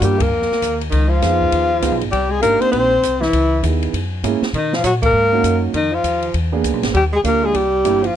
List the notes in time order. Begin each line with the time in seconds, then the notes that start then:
0.00 G2 G3 A#3 D4 F4 F#4 G4 A#4, kick, hi-hat pedal, ride
0.18 A#3 A#4, kick, ride
0.30 F2
0.42 snare
0.50 muted upright bass stroke, snare
0.62 D#2, kick, hi-hat pedal, ride
0.81 ride
0.91 C#2 D#3 D#4, kick, ride
1.08 F3 F4
1.22 F2 B3 D#4 F4 G#4, kick, snare, hi-hat pedal, ride
1.41 kick
1.52 D#2, kick, ride
1.82 C#2 B3 D#4 F4 G#4, kick, hi-hat pedal, ride
1.92 B1
2.01 G#1, ride
2.11 C2 G3 G4, kick, ride
2.30 G#3 G#4
2.41 G#1 A#3 D4 D#4 G4 A#4, kick, hi-hat pedal, ride
2.61 C4 C5, muted upright bass stroke, ride
2.71 A#1 C4 C5, kick, ride
3.03 C2, kick, hi-hat pedal, ride
3.21 E3 E4, snare
3.33 C#2, kick, ride
3.63 D#2 B3 D#4 E4 G#4, kick, hi-hat pedal, ride
3.83 ride
3.93 F#2, kick, ride
4.23 G#2 A#3 C#4 E4 G#4, kick, hi-hat pedal, ride
4.41 muted upright bass stroke, snare
4.53 B2 D#3, kick, ride
4.57 D#4
4.73 F3 F4, snare
4.83 A#2 F#3 F#4, kick, hi-hat pedal, ride
5.02 A#3 A#4, kick, ride
5.13 G#2
5.32 A#3 C#4 D#4 F#4
5.43 F#2, kick, hi-hat pedal, ride
5.74 F2 D#3 D#4, kick, ride
5.92 F3 F4
6.03 D#2, kick, hi-hat pedal, ride
6.22 ride
6.34 E2, kick, ride
6.52 A#3 B3 D4 G#4
6.64 C#2, kick, hi-hat pedal, ride
6.73 B1
6.83 G#1, snare, ride
6.94 D#2 G3 G4, kick, ride
7.13 G#3 G#4
7.24 D2 A#3 D4 F4 G4 A#4, kick, hi-hat pedal, ride
7.44 G#3 G#4
7.54 C2 G3 G4, kick, ride
7.84 G1 A#3 D4 E4 G4, kick, hi-hat pedal, ride
8.03 F3 F4, ride